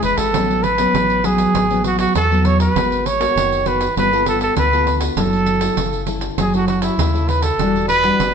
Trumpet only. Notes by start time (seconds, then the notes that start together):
0.04 B4
0.18 A4
0.63 B4
1.25 G#4
1.86 F#4
1.99 F#4
2.16 A4
2.46 C#5
2.60 B4
3.06 C#5
3.68 B4
3.98 B4
4.28 A4
4.42 A4
4.58 B4
5.18 A4
6.40 G#4
6.55 F#4
6.68 F#4
6.82 E4
7.29 B4
7.43 A4
7.88 B4